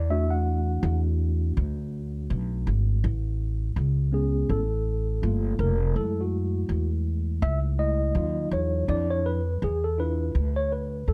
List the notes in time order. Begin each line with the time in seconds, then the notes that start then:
Already playing: E2 D5
0.10 A3 D4 F#4 E5
0.31 F#5
0.83 E2
1.57 D2
2.30 B1
2.67 G#1
3.04 A1
3.76 C#2
4.12 G#3 B3 C#4 G#4
4.49 A1 A4
5.22 G1 A3 A#3 F4
5.59 F1 A#4
5.96 F#2 G#3 A3 E4 A4
6.21 F#4
6.69 E2
7.42 C#2 E5
7.78 G#3 A3 E4 D#5
8.15 D#2 F#3 D#4 F4
8.51 E2 C#5
8.88 F2 F3 D4 E4 D5
9.11 C#5
9.26 B4
9.62 E2 G#4
9.84 A4
9.98 D4 E4 F4 B4
10.35 D2
10.56 C#5
10.72 B4
11.08 F2 A4